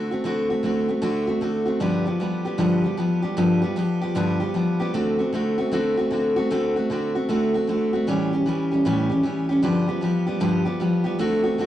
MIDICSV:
0, 0, Header, 1, 2, 480
1, 0, Start_track
1, 0, Tempo, 390371
1, 318, Time_signature, 4, 2, 24, 8
1, 14337, End_track
2, 0, Start_track
2, 0, Title_t, "Steel-string acoustic guitar"
2, 0, Program_c, 0, 25
2, 0, Note_on_c, 0, 50, 65
2, 0, Note_on_c, 0, 57, 64
2, 0, Note_on_c, 0, 60, 72
2, 136, Note_on_c, 0, 66, 59
2, 139, Note_off_c, 0, 60, 0
2, 142, Note_off_c, 0, 50, 0
2, 150, Note_off_c, 0, 57, 0
2, 153, Note_on_c, 0, 60, 61
2, 166, Note_on_c, 0, 57, 59
2, 290, Note_off_c, 0, 57, 0
2, 294, Note_on_c, 0, 50, 79
2, 298, Note_off_c, 0, 60, 0
2, 305, Note_on_c, 0, 57, 79
2, 306, Note_off_c, 0, 66, 0
2, 312, Note_on_c, 0, 60, 91
2, 320, Note_on_c, 0, 66, 88
2, 600, Note_off_c, 0, 66, 0
2, 615, Note_on_c, 0, 66, 57
2, 617, Note_off_c, 0, 50, 0
2, 617, Note_off_c, 0, 60, 0
2, 622, Note_off_c, 0, 57, 0
2, 632, Note_on_c, 0, 60, 57
2, 644, Note_on_c, 0, 57, 46
2, 770, Note_off_c, 0, 57, 0
2, 773, Note_on_c, 0, 50, 66
2, 783, Note_off_c, 0, 60, 0
2, 785, Note_on_c, 0, 57, 77
2, 791, Note_off_c, 0, 66, 0
2, 797, Note_on_c, 0, 60, 76
2, 805, Note_on_c, 0, 66, 83
2, 1073, Note_off_c, 0, 66, 0
2, 1084, Note_off_c, 0, 60, 0
2, 1088, Note_on_c, 0, 66, 57
2, 1096, Note_off_c, 0, 50, 0
2, 1097, Note_off_c, 0, 57, 0
2, 1098, Note_on_c, 0, 60, 53
2, 1112, Note_on_c, 0, 57, 48
2, 1243, Note_off_c, 0, 57, 0
2, 1250, Note_off_c, 0, 60, 0
2, 1250, Note_on_c, 0, 50, 97
2, 1256, Note_off_c, 0, 66, 0
2, 1257, Note_on_c, 0, 57, 78
2, 1265, Note_on_c, 0, 60, 99
2, 1271, Note_on_c, 0, 66, 104
2, 1546, Note_off_c, 0, 66, 0
2, 1561, Note_on_c, 0, 66, 63
2, 1567, Note_off_c, 0, 60, 0
2, 1575, Note_off_c, 0, 50, 0
2, 1579, Note_off_c, 0, 57, 0
2, 1582, Note_on_c, 0, 60, 56
2, 1592, Note_on_c, 0, 57, 49
2, 1733, Note_off_c, 0, 57, 0
2, 1733, Note_on_c, 0, 50, 64
2, 1741, Note_off_c, 0, 60, 0
2, 1745, Note_off_c, 0, 66, 0
2, 1747, Note_on_c, 0, 57, 70
2, 1756, Note_on_c, 0, 60, 72
2, 1764, Note_on_c, 0, 66, 65
2, 2020, Note_off_c, 0, 66, 0
2, 2034, Note_off_c, 0, 60, 0
2, 2035, Note_on_c, 0, 66, 63
2, 2049, Note_on_c, 0, 60, 58
2, 2052, Note_off_c, 0, 57, 0
2, 2057, Note_off_c, 0, 50, 0
2, 2066, Note_on_c, 0, 57, 52
2, 2213, Note_on_c, 0, 43, 84
2, 2217, Note_on_c, 0, 50, 86
2, 2220, Note_off_c, 0, 57, 0
2, 2221, Note_on_c, 0, 53, 88
2, 2222, Note_off_c, 0, 60, 0
2, 2222, Note_off_c, 0, 66, 0
2, 2225, Note_on_c, 0, 55, 85
2, 2227, Note_on_c, 0, 59, 89
2, 2237, Note_on_c, 0, 67, 91
2, 2512, Note_off_c, 0, 67, 0
2, 2524, Note_off_c, 0, 59, 0
2, 2527, Note_on_c, 0, 67, 55
2, 2536, Note_off_c, 0, 55, 0
2, 2537, Note_off_c, 0, 43, 0
2, 2539, Note_off_c, 0, 50, 0
2, 2539, Note_on_c, 0, 59, 59
2, 2541, Note_off_c, 0, 53, 0
2, 2551, Note_on_c, 0, 55, 53
2, 2557, Note_on_c, 0, 53, 52
2, 2688, Note_off_c, 0, 53, 0
2, 2703, Note_off_c, 0, 55, 0
2, 2703, Note_on_c, 0, 53, 79
2, 2707, Note_off_c, 0, 59, 0
2, 2708, Note_off_c, 0, 67, 0
2, 2718, Note_on_c, 0, 55, 72
2, 2722, Note_on_c, 0, 59, 73
2, 2738, Note_on_c, 0, 67, 72
2, 2997, Note_off_c, 0, 67, 0
2, 3007, Note_off_c, 0, 59, 0
2, 3012, Note_on_c, 0, 67, 58
2, 3018, Note_off_c, 0, 55, 0
2, 3021, Note_off_c, 0, 53, 0
2, 3022, Note_on_c, 0, 59, 58
2, 3032, Note_on_c, 0, 55, 50
2, 3044, Note_on_c, 0, 53, 45
2, 3167, Note_off_c, 0, 55, 0
2, 3168, Note_off_c, 0, 53, 0
2, 3170, Note_on_c, 0, 43, 81
2, 3173, Note_on_c, 0, 50, 90
2, 3175, Note_off_c, 0, 59, 0
2, 3179, Note_off_c, 0, 67, 0
2, 3182, Note_on_c, 0, 53, 88
2, 3182, Note_on_c, 0, 55, 95
2, 3190, Note_on_c, 0, 59, 100
2, 3194, Note_on_c, 0, 67, 98
2, 3473, Note_off_c, 0, 67, 0
2, 3488, Note_on_c, 0, 67, 62
2, 3492, Note_off_c, 0, 59, 0
2, 3495, Note_off_c, 0, 43, 0
2, 3497, Note_off_c, 0, 50, 0
2, 3501, Note_off_c, 0, 53, 0
2, 3501, Note_off_c, 0, 55, 0
2, 3507, Note_on_c, 0, 59, 62
2, 3516, Note_on_c, 0, 55, 57
2, 3522, Note_on_c, 0, 53, 52
2, 3642, Note_off_c, 0, 53, 0
2, 3652, Note_off_c, 0, 55, 0
2, 3657, Note_on_c, 0, 53, 74
2, 3661, Note_off_c, 0, 59, 0
2, 3667, Note_on_c, 0, 55, 66
2, 3668, Note_off_c, 0, 67, 0
2, 3676, Note_on_c, 0, 59, 75
2, 3685, Note_on_c, 0, 67, 81
2, 3949, Note_off_c, 0, 67, 0
2, 3960, Note_off_c, 0, 59, 0
2, 3964, Note_on_c, 0, 67, 65
2, 3973, Note_off_c, 0, 55, 0
2, 3975, Note_on_c, 0, 59, 55
2, 3978, Note_off_c, 0, 53, 0
2, 3987, Note_on_c, 0, 55, 60
2, 3996, Note_on_c, 0, 53, 47
2, 4136, Note_off_c, 0, 53, 0
2, 4139, Note_off_c, 0, 55, 0
2, 4141, Note_off_c, 0, 59, 0
2, 4141, Note_on_c, 0, 43, 81
2, 4144, Note_on_c, 0, 50, 95
2, 4146, Note_off_c, 0, 67, 0
2, 4150, Note_on_c, 0, 53, 95
2, 4154, Note_on_c, 0, 55, 92
2, 4156, Note_on_c, 0, 59, 97
2, 4159, Note_on_c, 0, 67, 92
2, 4433, Note_off_c, 0, 67, 0
2, 4445, Note_off_c, 0, 59, 0
2, 4447, Note_on_c, 0, 67, 69
2, 4452, Note_off_c, 0, 55, 0
2, 4460, Note_off_c, 0, 43, 0
2, 4460, Note_on_c, 0, 59, 58
2, 4462, Note_off_c, 0, 50, 0
2, 4462, Note_off_c, 0, 53, 0
2, 4467, Note_on_c, 0, 55, 60
2, 4477, Note_on_c, 0, 53, 52
2, 4609, Note_off_c, 0, 53, 0
2, 4618, Note_off_c, 0, 55, 0
2, 4623, Note_on_c, 0, 53, 75
2, 4627, Note_off_c, 0, 59, 0
2, 4628, Note_off_c, 0, 67, 0
2, 4633, Note_on_c, 0, 55, 76
2, 4641, Note_on_c, 0, 59, 78
2, 4655, Note_on_c, 0, 67, 85
2, 4921, Note_off_c, 0, 67, 0
2, 4932, Note_off_c, 0, 59, 0
2, 4936, Note_on_c, 0, 67, 65
2, 4941, Note_off_c, 0, 55, 0
2, 4942, Note_off_c, 0, 53, 0
2, 4946, Note_on_c, 0, 59, 59
2, 4956, Note_on_c, 0, 55, 57
2, 4965, Note_on_c, 0, 53, 57
2, 5097, Note_off_c, 0, 53, 0
2, 5101, Note_on_c, 0, 43, 93
2, 5106, Note_off_c, 0, 55, 0
2, 5108, Note_on_c, 0, 50, 103
2, 5111, Note_off_c, 0, 59, 0
2, 5112, Note_off_c, 0, 67, 0
2, 5112, Note_on_c, 0, 53, 99
2, 5120, Note_on_c, 0, 55, 105
2, 5125, Note_on_c, 0, 59, 94
2, 5125, Note_on_c, 0, 67, 101
2, 5394, Note_off_c, 0, 67, 0
2, 5408, Note_off_c, 0, 59, 0
2, 5409, Note_on_c, 0, 67, 65
2, 5419, Note_off_c, 0, 55, 0
2, 5420, Note_off_c, 0, 43, 0
2, 5423, Note_on_c, 0, 59, 59
2, 5424, Note_off_c, 0, 50, 0
2, 5426, Note_off_c, 0, 53, 0
2, 5434, Note_on_c, 0, 55, 49
2, 5447, Note_on_c, 0, 53, 53
2, 5569, Note_off_c, 0, 53, 0
2, 5578, Note_off_c, 0, 55, 0
2, 5583, Note_on_c, 0, 53, 71
2, 5588, Note_off_c, 0, 67, 0
2, 5591, Note_off_c, 0, 59, 0
2, 5593, Note_on_c, 0, 55, 68
2, 5606, Note_on_c, 0, 59, 82
2, 5612, Note_on_c, 0, 67, 70
2, 5883, Note_off_c, 0, 67, 0
2, 5894, Note_off_c, 0, 59, 0
2, 5898, Note_on_c, 0, 67, 64
2, 5901, Note_off_c, 0, 53, 0
2, 5906, Note_off_c, 0, 55, 0
2, 5908, Note_on_c, 0, 59, 58
2, 5921, Note_on_c, 0, 55, 65
2, 5929, Note_on_c, 0, 53, 59
2, 6066, Note_off_c, 0, 53, 0
2, 6070, Note_off_c, 0, 55, 0
2, 6071, Note_on_c, 0, 50, 89
2, 6073, Note_off_c, 0, 67, 0
2, 6075, Note_on_c, 0, 57, 97
2, 6078, Note_off_c, 0, 59, 0
2, 6082, Note_on_c, 0, 60, 91
2, 6092, Note_on_c, 0, 66, 93
2, 6365, Note_off_c, 0, 66, 0
2, 6379, Note_on_c, 0, 66, 61
2, 6380, Note_off_c, 0, 60, 0
2, 6385, Note_off_c, 0, 50, 0
2, 6387, Note_off_c, 0, 57, 0
2, 6395, Note_on_c, 0, 60, 54
2, 6410, Note_on_c, 0, 57, 51
2, 6549, Note_off_c, 0, 57, 0
2, 6549, Note_on_c, 0, 50, 68
2, 6553, Note_off_c, 0, 66, 0
2, 6557, Note_off_c, 0, 60, 0
2, 6563, Note_on_c, 0, 57, 75
2, 6572, Note_on_c, 0, 60, 82
2, 6580, Note_on_c, 0, 66, 82
2, 6845, Note_off_c, 0, 66, 0
2, 6860, Note_off_c, 0, 60, 0
2, 6860, Note_on_c, 0, 66, 65
2, 6864, Note_off_c, 0, 50, 0
2, 6871, Note_off_c, 0, 57, 0
2, 6875, Note_on_c, 0, 60, 59
2, 6890, Note_on_c, 0, 57, 52
2, 7024, Note_off_c, 0, 57, 0
2, 7028, Note_on_c, 0, 50, 86
2, 7030, Note_off_c, 0, 60, 0
2, 7033, Note_off_c, 0, 66, 0
2, 7039, Note_on_c, 0, 57, 87
2, 7045, Note_on_c, 0, 60, 97
2, 7053, Note_on_c, 0, 66, 97
2, 7329, Note_off_c, 0, 66, 0
2, 7344, Note_off_c, 0, 50, 0
2, 7344, Note_on_c, 0, 66, 67
2, 7348, Note_off_c, 0, 60, 0
2, 7349, Note_off_c, 0, 57, 0
2, 7362, Note_on_c, 0, 60, 59
2, 7373, Note_on_c, 0, 57, 55
2, 7507, Note_off_c, 0, 57, 0
2, 7508, Note_on_c, 0, 50, 67
2, 7515, Note_off_c, 0, 66, 0
2, 7517, Note_off_c, 0, 60, 0
2, 7522, Note_on_c, 0, 57, 69
2, 7531, Note_on_c, 0, 60, 70
2, 7540, Note_on_c, 0, 66, 71
2, 7807, Note_off_c, 0, 66, 0
2, 7821, Note_on_c, 0, 66, 67
2, 7823, Note_off_c, 0, 50, 0
2, 7827, Note_off_c, 0, 60, 0
2, 7831, Note_off_c, 0, 57, 0
2, 7842, Note_on_c, 0, 60, 60
2, 7854, Note_on_c, 0, 57, 52
2, 7988, Note_off_c, 0, 57, 0
2, 7994, Note_off_c, 0, 66, 0
2, 7998, Note_off_c, 0, 60, 0
2, 7998, Note_on_c, 0, 50, 81
2, 8003, Note_on_c, 0, 57, 95
2, 8013, Note_on_c, 0, 60, 95
2, 8020, Note_on_c, 0, 66, 98
2, 8298, Note_off_c, 0, 66, 0
2, 8309, Note_off_c, 0, 50, 0
2, 8311, Note_off_c, 0, 57, 0
2, 8311, Note_off_c, 0, 60, 0
2, 8313, Note_on_c, 0, 66, 59
2, 8326, Note_on_c, 0, 60, 53
2, 8345, Note_on_c, 0, 57, 51
2, 8480, Note_off_c, 0, 66, 0
2, 8481, Note_off_c, 0, 57, 0
2, 8481, Note_on_c, 0, 50, 76
2, 8487, Note_off_c, 0, 60, 0
2, 8496, Note_on_c, 0, 57, 80
2, 8503, Note_on_c, 0, 60, 75
2, 8512, Note_on_c, 0, 66, 82
2, 8779, Note_off_c, 0, 66, 0
2, 8790, Note_off_c, 0, 50, 0
2, 8790, Note_off_c, 0, 60, 0
2, 8794, Note_on_c, 0, 66, 58
2, 8798, Note_off_c, 0, 57, 0
2, 8805, Note_on_c, 0, 60, 61
2, 8822, Note_on_c, 0, 57, 51
2, 8953, Note_off_c, 0, 57, 0
2, 8959, Note_off_c, 0, 60, 0
2, 8960, Note_off_c, 0, 66, 0
2, 8960, Note_on_c, 0, 50, 85
2, 8968, Note_on_c, 0, 57, 92
2, 8974, Note_on_c, 0, 60, 90
2, 8977, Note_on_c, 0, 66, 105
2, 9258, Note_off_c, 0, 66, 0
2, 9270, Note_off_c, 0, 50, 0
2, 9273, Note_on_c, 0, 66, 68
2, 9274, Note_off_c, 0, 57, 0
2, 9276, Note_off_c, 0, 60, 0
2, 9291, Note_on_c, 0, 60, 56
2, 9309, Note_on_c, 0, 57, 51
2, 9436, Note_on_c, 0, 50, 64
2, 9439, Note_off_c, 0, 57, 0
2, 9440, Note_off_c, 0, 66, 0
2, 9444, Note_off_c, 0, 60, 0
2, 9453, Note_on_c, 0, 57, 74
2, 9459, Note_on_c, 0, 60, 71
2, 9474, Note_on_c, 0, 66, 75
2, 9737, Note_off_c, 0, 66, 0
2, 9748, Note_off_c, 0, 50, 0
2, 9751, Note_off_c, 0, 60, 0
2, 9751, Note_on_c, 0, 66, 64
2, 9756, Note_off_c, 0, 57, 0
2, 9765, Note_on_c, 0, 60, 54
2, 9781, Note_on_c, 0, 57, 53
2, 9919, Note_off_c, 0, 66, 0
2, 9924, Note_on_c, 0, 45, 84
2, 9926, Note_off_c, 0, 60, 0
2, 9932, Note_on_c, 0, 52, 89
2, 9934, Note_off_c, 0, 57, 0
2, 9938, Note_on_c, 0, 55, 91
2, 9944, Note_on_c, 0, 61, 95
2, 9950, Note_on_c, 0, 67, 91
2, 10227, Note_off_c, 0, 67, 0
2, 10232, Note_off_c, 0, 45, 0
2, 10236, Note_off_c, 0, 52, 0
2, 10239, Note_off_c, 0, 55, 0
2, 10241, Note_on_c, 0, 67, 67
2, 10242, Note_off_c, 0, 61, 0
2, 10259, Note_on_c, 0, 61, 56
2, 10276, Note_on_c, 0, 55, 46
2, 10399, Note_on_c, 0, 52, 73
2, 10401, Note_off_c, 0, 55, 0
2, 10405, Note_off_c, 0, 67, 0
2, 10413, Note_off_c, 0, 61, 0
2, 10416, Note_on_c, 0, 55, 81
2, 10429, Note_on_c, 0, 61, 74
2, 10435, Note_on_c, 0, 67, 83
2, 10701, Note_off_c, 0, 67, 0
2, 10710, Note_off_c, 0, 52, 0
2, 10713, Note_off_c, 0, 61, 0
2, 10715, Note_on_c, 0, 67, 55
2, 10718, Note_off_c, 0, 55, 0
2, 10728, Note_on_c, 0, 61, 60
2, 10746, Note_on_c, 0, 55, 48
2, 10882, Note_off_c, 0, 67, 0
2, 10882, Note_on_c, 0, 45, 88
2, 10883, Note_off_c, 0, 55, 0
2, 10888, Note_off_c, 0, 61, 0
2, 10893, Note_on_c, 0, 52, 99
2, 10898, Note_on_c, 0, 55, 98
2, 10903, Note_on_c, 0, 61, 96
2, 10909, Note_on_c, 0, 67, 97
2, 11168, Note_off_c, 0, 67, 0
2, 11183, Note_on_c, 0, 67, 65
2, 11185, Note_off_c, 0, 61, 0
2, 11191, Note_off_c, 0, 45, 0
2, 11196, Note_off_c, 0, 52, 0
2, 11199, Note_off_c, 0, 55, 0
2, 11200, Note_on_c, 0, 61, 61
2, 11213, Note_on_c, 0, 55, 53
2, 11353, Note_off_c, 0, 55, 0
2, 11354, Note_on_c, 0, 52, 66
2, 11356, Note_off_c, 0, 67, 0
2, 11364, Note_off_c, 0, 61, 0
2, 11368, Note_on_c, 0, 55, 65
2, 11379, Note_on_c, 0, 61, 71
2, 11390, Note_on_c, 0, 67, 69
2, 11654, Note_off_c, 0, 67, 0
2, 11667, Note_off_c, 0, 52, 0
2, 11668, Note_on_c, 0, 67, 66
2, 11674, Note_off_c, 0, 55, 0
2, 11680, Note_off_c, 0, 61, 0
2, 11692, Note_on_c, 0, 61, 62
2, 11708, Note_on_c, 0, 55, 53
2, 11833, Note_off_c, 0, 55, 0
2, 11834, Note_on_c, 0, 43, 91
2, 11838, Note_on_c, 0, 50, 95
2, 11839, Note_off_c, 0, 67, 0
2, 11844, Note_off_c, 0, 61, 0
2, 11844, Note_on_c, 0, 53, 85
2, 11848, Note_on_c, 0, 55, 90
2, 11849, Note_on_c, 0, 59, 90
2, 11856, Note_on_c, 0, 67, 88
2, 12128, Note_off_c, 0, 67, 0
2, 12140, Note_off_c, 0, 59, 0
2, 12143, Note_on_c, 0, 67, 55
2, 12148, Note_off_c, 0, 43, 0
2, 12150, Note_off_c, 0, 50, 0
2, 12151, Note_off_c, 0, 55, 0
2, 12153, Note_off_c, 0, 53, 0
2, 12155, Note_on_c, 0, 59, 55
2, 12165, Note_on_c, 0, 55, 58
2, 12171, Note_on_c, 0, 53, 50
2, 12294, Note_off_c, 0, 53, 0
2, 12309, Note_off_c, 0, 55, 0
2, 12309, Note_on_c, 0, 53, 62
2, 12315, Note_off_c, 0, 59, 0
2, 12316, Note_off_c, 0, 67, 0
2, 12324, Note_on_c, 0, 55, 68
2, 12330, Note_on_c, 0, 59, 74
2, 12344, Note_on_c, 0, 67, 78
2, 12609, Note_off_c, 0, 67, 0
2, 12619, Note_off_c, 0, 59, 0
2, 12624, Note_on_c, 0, 67, 60
2, 12625, Note_off_c, 0, 53, 0
2, 12630, Note_off_c, 0, 55, 0
2, 12634, Note_on_c, 0, 59, 56
2, 12645, Note_on_c, 0, 55, 56
2, 12657, Note_on_c, 0, 53, 50
2, 12783, Note_off_c, 0, 53, 0
2, 12785, Note_off_c, 0, 55, 0
2, 12790, Note_on_c, 0, 43, 82
2, 12795, Note_off_c, 0, 59, 0
2, 12797, Note_off_c, 0, 67, 0
2, 12798, Note_on_c, 0, 50, 87
2, 12798, Note_on_c, 0, 53, 109
2, 12800, Note_on_c, 0, 55, 98
2, 12809, Note_on_c, 0, 59, 91
2, 12815, Note_on_c, 0, 67, 111
2, 13083, Note_off_c, 0, 67, 0
2, 13095, Note_off_c, 0, 59, 0
2, 13097, Note_on_c, 0, 67, 62
2, 13100, Note_off_c, 0, 55, 0
2, 13106, Note_off_c, 0, 43, 0
2, 13110, Note_off_c, 0, 50, 0
2, 13110, Note_off_c, 0, 53, 0
2, 13110, Note_on_c, 0, 59, 60
2, 13114, Note_on_c, 0, 55, 57
2, 13127, Note_on_c, 0, 53, 49
2, 13262, Note_off_c, 0, 53, 0
2, 13274, Note_off_c, 0, 67, 0
2, 13275, Note_off_c, 0, 55, 0
2, 13277, Note_on_c, 0, 53, 70
2, 13280, Note_off_c, 0, 59, 0
2, 13290, Note_on_c, 0, 55, 72
2, 13297, Note_on_c, 0, 59, 64
2, 13306, Note_on_c, 0, 67, 77
2, 13560, Note_off_c, 0, 67, 0
2, 13573, Note_off_c, 0, 59, 0
2, 13574, Note_on_c, 0, 67, 66
2, 13583, Note_off_c, 0, 55, 0
2, 13588, Note_on_c, 0, 59, 58
2, 13590, Note_off_c, 0, 53, 0
2, 13597, Note_on_c, 0, 55, 60
2, 13605, Note_on_c, 0, 53, 50
2, 13750, Note_off_c, 0, 53, 0
2, 13752, Note_off_c, 0, 67, 0
2, 13755, Note_on_c, 0, 50, 76
2, 13759, Note_off_c, 0, 55, 0
2, 13759, Note_off_c, 0, 59, 0
2, 13764, Note_on_c, 0, 57, 91
2, 13770, Note_on_c, 0, 60, 96
2, 13778, Note_on_c, 0, 66, 101
2, 14047, Note_off_c, 0, 66, 0
2, 14062, Note_on_c, 0, 66, 61
2, 14067, Note_off_c, 0, 60, 0
2, 14069, Note_off_c, 0, 50, 0
2, 14073, Note_off_c, 0, 57, 0
2, 14082, Note_on_c, 0, 60, 56
2, 14098, Note_on_c, 0, 57, 47
2, 14236, Note_off_c, 0, 66, 0
2, 14239, Note_off_c, 0, 57, 0
2, 14241, Note_on_c, 0, 50, 73
2, 14247, Note_off_c, 0, 60, 0
2, 14253, Note_on_c, 0, 57, 73
2, 14266, Note_on_c, 0, 60, 75
2, 14270, Note_on_c, 0, 66, 85
2, 14337, Note_off_c, 0, 50, 0
2, 14337, Note_off_c, 0, 57, 0
2, 14337, Note_off_c, 0, 60, 0
2, 14337, Note_off_c, 0, 66, 0
2, 14337, End_track
0, 0, End_of_file